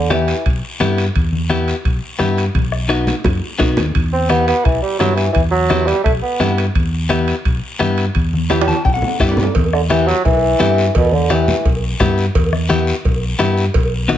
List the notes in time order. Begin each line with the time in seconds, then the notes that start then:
Already playing: E2 D3
0.10 E3 B3 E4 G4, bombo rim, high conga, high timbale, short guiro
0.28 high timbale, short guiro
0.46 B1, bombo low, high timbale, long guiro
0.80 G2 B3 E4 G4, bombo rim, high conga, high timbale, low timbale, short guiro
0.98 high timbale, short guiro
1.15 E2, bombo low, high timbale, long guiro
1.32 high conga
1.50 B3 E4 G4, bombo rim, high conga, high timbale, short guiro
1.68 high timbale, short guiro
1.85 B1, bombo low, high timbale, long guiro
2.19 G2 B3 E4 G4, bombo rim, high conga, high timbale, short guiro
2.38 high timbale, short guiro
2.55 B1, bombo low, high conga, high timbale, long guiro
2.72 bombo rim
2.89 B3 D#4 F#4, bombo rim, high timbale, short guiro
3.07 low conga, high timbale, short guiro
3.24 F#2, bombo low, low conga, high timbale, long guiro
3.58 B1 B3 D#4 F#4, bombo low, bombo rim, low conga, high timbale, low timbale, short guiro
3.77 D#2, low conga, high timbale, short guiro
3.95 E2, bombo low, high timbale, long guiro
4.13 C4
4.29 B3 E4 G4, bombo rim, high conga, high timbale, short guiro
4.48 B3, high timbale, short guiro
4.65 B1 E3, bombo low, high timbale, long guiro
4.82 G3
4.99 G2 F#3 B3 E4 G4, bombo rim, high conga, high timbale, low timbale, short guiro
5.16 E3, high timbale, short guiro
5.32 E2 E3, bombo low, high timbale, long guiro
5.51 F#3
5.70 B3 E4 G4, bombo rim, high conga, high timbale, short guiro
5.86 G3, high timbale, short guiro
6.04 B1 A3, bombo low, high timbale, long guiro
6.22 B3
6.40 G2 B3 E4 G4, bombo rim, high conga, high timbale, low timbale, short guiro
6.58 high timbale, short guiro
6.75 E2, bombo low, high timbale, long guiro
7.09 B3 E4 G4, bombo rim, high conga, high timbale, short guiro
7.28 high timbale, short guiro
7.45 B1, bombo low, high timbale, long guiro
7.79 G2 B3 E4 G4, bombo rim, high conga, high timbale, short guiro
7.98 high timbale, short guiro
8.15 E2, bombo low, high timbale, long guiro
8.33 high conga
8.50 B3 E4 G4, bombo rim, high conga, high timbale, short guiro
8.61 high timbale
8.68 A5, high conga, short guiro
8.73 high timbale
8.85 B1 G5, bombo low, high conga, long guiro
8.94 F#5, low timbale
9.02 low conga
9.08 low timbale
9.19 G2 B3 E4 G4 E5, bombo low, bombo rim, low conga, short guiro
9.29 D5, low timbale
9.37 low conga, short guiro
9.43 low timbale
9.55 E2, bombo low, cowbell, long guiro
9.73 D3, bombo rim
9.90 E3 B3 E4 G4, bombo rim, cowbell, high conga, short guiro
10.08 F#3, short guiro
10.25 B1 E3, bombo low, cowbell, long guiro
10.59 G2 B3 E4 G4, bombo rim, cowbell, high conga, low timbale, short guiro
10.78 short guiro
10.95 E2 B2, bombo low, cowbell, long guiro
11.12 D3, high conga
11.30 E3 B3 E4 G4, bombo rim, cowbell, high conga, short guiro
11.48 low conga, short guiro
11.65 B1, bombo low, cowbell, long guiro
12.00 G2 B3 E4 G4, bombo low, bombo rim, cowbell, high conga, low conga, short guiro
12.18 short guiro
12.35 E2, bombo low, cowbell, long guiro
12.52 bombo rim, high conga
12.69 B3 E4 G4, bombo rim, cowbell, high conga, short guiro
12.87 short guiro
13.05 B1, bombo low, cowbell, long guiro
13.39 G2 B3 E4 G4, bombo rim, cowbell, high conga, short guiro
13.58 short guiro
13.74 B1, bombo low, cowbell, long guiro
14.08 B3 D#4 F#4, bombo rim, cowbell, high conga, short guiro